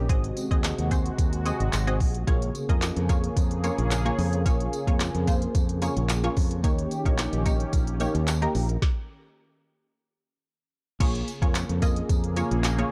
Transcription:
0.09 G#1 C3 G#3 C4 F#4 G#4 D#5, kick, closed hi-hat
0.24 closed hi-hat
0.37 closed hi-hat, tambourine
0.51 D#2 C4 F#4 G#4 D#5, kick, closed hi-hat
0.64 snare, clap, closed hi-hat, tambourine
0.78 D#2, closed hi-hat
0.91 C4 F#4 G#4 C5, kick, closed hi-hat, tambourine
1.06 closed hi-hat
1.18 D#2, kick, closed hi-hat, tambourine
1.33 closed hi-hat
1.45 C4 F#4 G#4 D#5, closed hi-hat, tambourine
1.60 G#1, closed hi-hat
1.73 G#1, snare, clap, closed hi-hat, tambourine
1.87 C4 F#4 G#4 D#5, closed hi-hat
2.00 A#1, kick, open hi-hat
2.15 closed hi-hat
2.27 A#1 C#3 A#3 F4 G#4 C#5, kick, closed hi-hat
2.42 closed hi-hat
2.55 closed hi-hat, tambourine
2.69 F2 A#3 F4 G#4 D#5, kick, closed hi-hat
2.82 snare, clap, closed hi-hat, tambourine
2.96 F2, closed hi-hat
3.09 A#3 F4 G#4 C#5, kick, closed hi-hat, tambourine
3.24 closed hi-hat
3.37 F2, kick, closed hi-hat, tambourine
3.51 closed hi-hat
3.64 A#3 F4 G#4 C#5, closed hi-hat, tambourine
3.78 A#1, closed hi-hat
3.91 snare, clap, closed hi-hat, tambourine
4.05 A#3 F4 G#4 C#5, closed hi-hat
4.19 F2, open hi-hat, tambourine
4.33 closed hi-hat
4.46 A#1 A#3 F4 G#4 C#5, kick, closed hi-hat, tambourine
4.60 closed hi-hat
4.73 closed hi-hat, tambourine
4.87 F2 A#3 F4 G#4 C#5, kick, closed hi-hat
5.00 snare, clap, closed hi-hat, tambourine
5.15 F2, closed hi-hat
5.27 A#3 F4 G#4 C5, kick, closed hi-hat, tambourine
5.42 closed hi-hat
5.55 F2, kick, closed hi-hat, tambourine
5.69 closed hi-hat
5.82 A#3 F4 G#4 C#5, closed hi-hat, tambourine
5.97 A#1, closed hi-hat
6.09 snare, clap, closed hi-hat, tambourine
6.24 A#3 F4 G#4 C#5, closed hi-hat
6.37 F2, kick, open hi-hat, tambourine
6.51 closed hi-hat
6.64 D#2 D#3 A#3 C#4 D#4 G4 C#5, kick, closed hi-hat, tambourine
6.79 closed hi-hat
6.91 closed hi-hat, tambourine
7.05 A#1 A#3 D#4 G4 C#5, kick, closed hi-hat
7.18 snare, clap, closed hi-hat, tambourine
7.33 A#1, closed hi-hat
7.46 A#3 D#4 G4 C#5, kick, closed hi-hat, tambourine
7.60 closed hi-hat
7.73 A#1, kick, closed hi-hat, tambourine
7.87 closed hi-hat
8.00 A#3 D#4 G4 C#5, closed hi-hat, tambourine
8.15 D#2, closed hi-hat
8.27 snare, clap, closed hi-hat, tambourine
8.42 A#3 D#4 G4 A#4, closed hi-hat
8.55 A#1, open hi-hat, tambourine
8.69 closed hi-hat
8.82 kick, snare
11.00 A#1 C#3 A#3 F4 G#4 C#5, kick, closed hi-hat, crash, tambourine
11.15 closed hi-hat
11.28 closed hi-hat, tambourine
11.42 F2 A#3 F4 G#4 C#5, kick, closed hi-hat
11.55 snare, clap, closed hi-hat, tambourine
11.69 F2, closed hi-hat
11.82 A#3 F4 G#4 D#5, kick, closed hi-hat, tambourine
11.96 closed hi-hat
12.09 F2, kick, closed hi-hat, tambourine
12.24 closed hi-hat
12.36 A#3 F4 G#4 C#5, closed hi-hat, tambourine
12.51 A#1, closed hi-hat
12.64 snare, clap, closed hi-hat, tambourine
12.78 A#3 F4 G#4 C#5, closed hi-hat

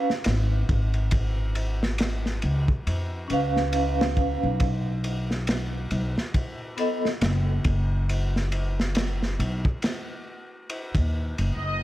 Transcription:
Already playing: B4 F5
0.10 snare
0.24 G#1, snare, ride
0.69 G#1, kick, ride
0.94 ride
1.11 kick, ride
1.55 ride
1.83 snare
1.98 snare, ride
2.26 snare
2.42 C#2, ride
2.68 kick
2.87 F2, ride
3.28 C#2 C#4 B4, ride
3.33 F5
3.57 snare
3.73 ride
4.01 snare
4.17 kick, ride
4.43 B1
4.60 kick, ride
5.04 ride
5.31 snare
5.47 snare, ride
5.91 B1, ride
6.18 snare
6.34 kick, ride
6.77 B3 A4 D#5, ride
7.05 snare
7.21 F#1, snare, ride
7.64 F#1, kick, ride
8.09 ride
8.36 snare
8.52 ride
8.80 snare
8.95 snare, ride
9.23 snare
9.39 B1, ride
9.65 kick
9.82 snare, ride
10.70 ride
10.95 D#2, kick, ride
11.38 F#1, ride
11.56 F#1 D#5

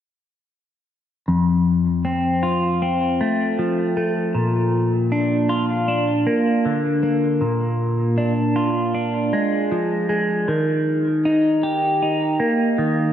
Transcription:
1.28 F2
2.05 C4
2.43 F4
2.82 C4
3.21 A3
3.59 F3
3.97 A3
4.35 A#2
5.12 D4
5.49 F4
5.88 D4
6.27 A#3
6.65 D3
7.03 A#3
7.41 A#2
8.18 D4
8.56 F4
8.94 D4
9.33 G#3
9.71 F3
10.09 G#3
10.48 D#3
11.25 D#4
11.63 G4
12.02 D#4
12.40 A#3
12.78 D#3

